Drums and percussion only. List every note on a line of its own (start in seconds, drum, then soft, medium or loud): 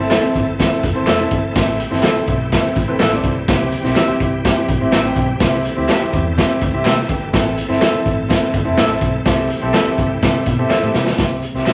0.10 snare loud
0.10 clap medium
0.10 closed hi-hat loud
0.10 tambourine medium
0.10 high conga medium
0.35 kick medium
0.35 closed hi-hat medium
0.35 tambourine medium
0.59 kick medium
0.59 snare loud
0.59 closed hi-hat loud
0.59 tambourine medium
0.59 muted conga soft
0.59 low conga medium
0.83 kick medium
0.83 closed hi-hat medium
0.83 tambourine medium
0.83 muted conga medium
0.83 low conga medium
1.07 snare loud
1.07 clap loud
1.07 closed hi-hat medium
1.07 tambourine loud
1.07 high conga medium
1.20 high conga medium
1.31 kick medium
1.31 closed hi-hat medium
1.44 high conga soft
1.55 kick loud
1.55 snare loud
1.55 closed hi-hat loud
1.55 muted conga soft
1.79 closed hi-hat medium
1.79 tambourine soft
1.79 muted conga soft
1.92 snare soft
2.03 snare loud
2.03 clap medium
2.03 closed hi-hat medium
2.03 tambourine medium
2.03 high conga medium
2.27 kick medium
2.27 closed hi-hat medium
2.27 tambourine medium
2.52 kick medium
2.52 snare loud
2.52 closed hi-hat medium
2.52 tambourine medium
2.52 muted conga medium
2.52 low conga medium
2.75 kick medium
2.75 closed hi-hat medium
2.75 tambourine medium
2.75 muted conga medium
2.75 low conga medium
3.00 snare loud
3.00 clap loud
3.00 closed hi-hat medium
3.00 tambourine loud
3.00 high conga medium
3.12 high conga medium
3.24 kick medium
3.24 closed hi-hat medium
3.24 tambourine soft
3.48 kick loud
3.48 snare loud
3.48 closed hi-hat loud
3.48 tambourine soft
3.48 muted conga soft
3.72 closed hi-hat medium
3.72 tambourine soft
3.72 muted conga soft
3.84 snare soft
3.96 snare loud
3.96 clap medium
3.96 closed hi-hat medium
3.96 tambourine medium
3.96 high conga medium
4.20 kick medium
4.20 closed hi-hat medium
4.20 tambourine medium
4.44 kick medium
4.44 snare loud
4.44 closed hi-hat medium
4.44 tambourine medium
4.44 muted conga medium
4.44 low conga medium
4.68 kick medium
4.68 closed hi-hat medium
4.68 tambourine medium
4.68 muted conga medium
4.68 low conga medium
4.92 snare loud
4.92 clap loud
4.92 closed hi-hat loud
4.92 tambourine loud
4.92 high conga medium
5.05 high conga medium
5.16 kick medium
5.16 closed hi-hat medium
5.28 high conga soft
5.40 kick loud
5.40 snare loud
5.40 closed hi-hat loud
5.40 muted conga soft
5.65 closed hi-hat medium
5.65 tambourine soft
5.65 muted conga soft
5.88 snare loud
5.88 clap medium
5.88 closed hi-hat medium
5.88 tambourine medium
5.88 high conga medium
6.12 kick medium
6.12 closed hi-hat medium
6.12 tambourine medium
6.36 kick medium
6.36 snare loud
6.36 closed hi-hat loud
6.36 tambourine medium
6.36 muted conga soft
6.36 low conga medium
6.61 kick medium
6.61 closed hi-hat medium
6.61 tambourine medium
6.61 muted conga soft
6.61 low conga medium
6.85 snare loud
6.85 clap loud
6.85 closed hi-hat medium
6.85 tambourine loud
6.85 high conga medium
6.97 high conga medium
7.09 kick loud
7.09 closed hi-hat medium
7.09 tambourine soft
7.21 high conga soft
7.33 kick loud
7.33 snare loud
7.33 closed hi-hat loud
7.33 muted conga soft
7.57 closed hi-hat medium
7.57 tambourine soft
7.70 snare soft
7.81 snare loud
7.81 clap medium
7.81 closed hi-hat loud
7.81 tambourine medium
7.81 high conga medium
8.06 kick medium
8.06 closed hi-hat medium
8.06 tambourine medium
8.30 kick medium
8.30 snare loud
8.30 closed hi-hat loud
8.30 tambourine medium
8.30 muted conga medium
8.30 low conga medium
8.54 kick medium
8.54 closed hi-hat medium
8.54 tambourine medium
8.54 muted conga medium
8.54 low conga medium
8.78 snare loud
8.78 clap loud
8.78 closed hi-hat loud
8.78 tambourine loud
8.78 high conga medium
8.90 high conga medium
9.01 kick medium
9.01 closed hi-hat medium
9.01 tambourine soft
9.15 high conga soft
9.26 kick loud
9.26 snare loud
9.26 closed hi-hat medium
9.26 muted conga medium
9.50 closed hi-hat medium
9.50 tambourine soft
9.50 muted conga soft
9.73 snare loud
9.73 clap medium
9.73 closed hi-hat medium
9.73 tambourine medium
9.73 high conga medium
9.98 kick medium
9.98 closed hi-hat medium
9.98 tambourine medium
10.22 kick medium
10.22 snare loud
10.22 closed hi-hat loud
10.22 tambourine medium
10.22 muted conga soft
10.22 low conga medium
10.46 kick medium
10.46 closed hi-hat medium
10.46 tambourine medium
10.46 muted conga medium
10.46 low conga medium
10.70 snare medium
10.70 clap loud
10.70 tambourine loud
10.70 high conga medium
10.83 high conga medium
10.94 snare medium
11.07 snare medium
11.18 kick medium
11.18 snare loud
11.18 closed hi-hat medium
11.18 muted conga soft
11.42 closed hi-hat medium
11.42 tambourine soft
11.42 muted conga soft
11.55 snare soft
11.66 snare loud
11.66 clap medium
11.66 closed hi-hat medium
11.66 tambourine medium
11.66 high conga medium